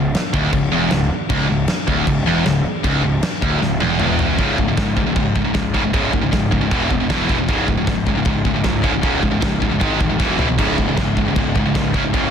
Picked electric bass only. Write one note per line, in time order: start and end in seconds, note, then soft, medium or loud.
0.00 0.13 C#1 medium
0.34 0.52 D1 loud
0.53 0.71 C#1 medium
0.72 0.90 E1 loud
0.91 1.09 C#1 medium
1.30 1.48 C#1 loud
1.49 1.67 C#1 medium
1.88 2.06 D1 loud
2.07 2.25 C#1 medium
2.26 2.44 E1 loud
2.46 2.64 C#1 medium
2.84 3.02 C#1 loud
3.03 3.21 C#1 medium
3.42 3.60 D1 medium
3.61 3.79 C#1 medium
3.81 3.99 E1 medium
4.00 4.36 E1 loud
4.39 4.56 C#1 loud
4.58 4.76 C#1 medium
4.77 4.95 C#1 medium
4.97 5.14 C#1 medium
5.16 5.34 C#1 loud
5.36 5.53 C#1 medium
5.55 5.72 C#2 medium
5.75 5.92 C#1 medium
5.94 6.11 C#1 loud
6.13 6.31 C#1 loud
6.33 6.50 C#1 medium
6.52 6.69 C#1 medium
6.71 6.89 E1 medium
6.91 7.08 E1 loud
7.10 7.27 E1 medium
7.30 7.47 E1 medium
7.49 7.66 C#1 loud
7.68 7.85 C#1 loud
7.87 8.05 C#1 medium
8.07 8.24 C#1 medium
8.26 8.43 C#1 medium
8.45 8.63 C#1 loud
8.65 8.82 C#2 medium
8.84 9.02 C#1 medium
9.04 9.21 C#1 medium
9.23 9.40 C#1 loud
9.42 9.60 C#1 medium
9.62 9.79 C#1 medium
9.81 9.99 G#1 loud
10.00 10.18 D#1 medium
10.20 10.37 E1 medium
10.38 10.56 B1 medium
10.59 10.76 C#1 loud
10.78 10.96 C#1 medium
10.98 11.15 C#1 medium
11.17 11.35 C#1 medium
11.36 11.54 C#1 medium
11.55 11.73 C#1 medium
11.76 11.93 C#2 medium
11.94 12.12 C#1 medium
12.14 12.30 C#1 loud